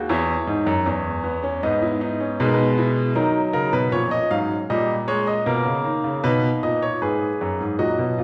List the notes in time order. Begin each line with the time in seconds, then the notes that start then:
Already playing: G#3
0.09 E2 E4 C#5
0.47 G#2 D#4
0.66 F#2
0.86 E2 C#4
1.24 B3
1.43 C#4
1.63 G#2 B3 D#4 D#5
1.82 E4
2.01 D#4
2.20 C#4
2.40 B2 G#3 D#4 B4
2.47 A#4
2.54 B4
2.78 E4
3.15 D#3 F#3 D#4 A#4
3.53 C#3 A#4
3.73 B2 B4
3.92 A#2 F3 C#4 C#5
4.11 D#5
4.31 G#2 F#3 F5
4.70 A#2 G3 D#5
5.08 G#3 C#5
5.27 D#5
5.46 B2 A#3 A#4
5.66 C#3
5.85 D#3
6.04 C#3
6.24 B2 D#4 B4
6.63 A#2 D#5
6.82 C#5
7.02 G#2 G#4 B4
7.41 F#2
7.60 G#2
7.79 A#2 F#3 F#4 D#5
7.98 B2
8.18 A#2 F4